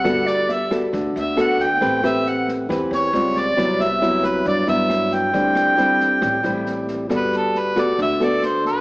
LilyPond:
<<
  \new Staff \with { instrumentName = "Flute" } { \time 4/4 \key g \major \tempo 4 = 136 fis''8 d''8 e''8 r4 e''8 fis''8 g''8~ | g''8 e''8 fis''8 r4 cis''4 d''8~ | d''8 e''4 b'8 d''8 e''4 g''8~ | g''2.~ g''8 r8 |
r1 | }
  \new Staff \with { instrumentName = "Harmonica" } { \time 4/4 \key g \major fis''8 d''8 e''8 r4 e''8 fis''8 g''8~ | g''8 e''8 fis''8 r4 cis''4 d''8~ | d''8 e''4 b'8 d''8 e''4 g''8~ | g''2.~ g''8 r8 |
b'8 a'8 b'8 d''8 e''8 d''8 c''8 b'8 | }
  \new Staff \with { instrumentName = "Nylon-string guitar" } { \time 4/4 \key g \major << { <b fis' a'>4 r8 <b fis' a'>4. <b fis' a'>8 r8 | <c' g' b'>8 <c' g' b'>4. <c' g' b'>4 <g bis eis'>4 | <fis b e'>8 r8 <fis b e'>4. <fis b e'>4. | <g c' e'>4 <g c' e'>4. <g c' e'>4. |
<b fis' a'>4. <b fis' a'>4 <b fis' a'>4. | } \\ { g2 d2 | a2 e4 r4 | c2 g,2 | d2 a,2 |
g2 d2 | } >> }
  \new Staff \with { instrumentName = "Upright bass" } { \clef bass \time 4/4 \key g \major g,,2 d,8 d,4. | a,,2 e,8 e,8 cis,4 | c,2 g,8 g,4. | d,2 a,,8 a,,4. |
g,,4. d,8 d,2 | }
  \new DrumStaff \with { instrumentName = "Drums" } \drummode { \time 4/4 <bd ss sn>8 sn8 sn8 <bd ss sn>8 <bd sn>8 sn8 <ss sn>8 <bd sn>8 | <bd sn>8 <ss sn>8 sn8 <bd sn>8 <bd ss sn>8 sn8 sn8 <bd sn>8 | <bd ss sn>8 sn8 sn8 <bd ss sn>8 <bd sn>8 sn8 <ss sn>8 <bd sn>8 | <bd sn>8 <ss sn>8 sn8 <bd sn>8 <bd ss sn>8 sn8 sn8 <bd sn>8 |
<bd ss sn>8 sn8 sn8 <bd ss sn>8 <bd sn>8 sn8 <ss sn>8 <bd sn>8 | }
>>